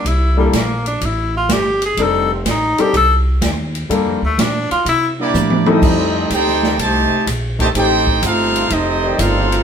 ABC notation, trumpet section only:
X:1
M:4/4
L:1/8
Q:"Swing" 1/4=125
K:Cdor
V:1 name="Trumpet section"
z8 | z8 | z4 z [B,=EGd]2 [CGA_e]- | [K:F] [CGA_e]2 [_EAcg]2 [Gcea]2 z [Gcea] |
[_EAcg]2 [EAcf]2 [CGA_e]2 [EAcf]2 |]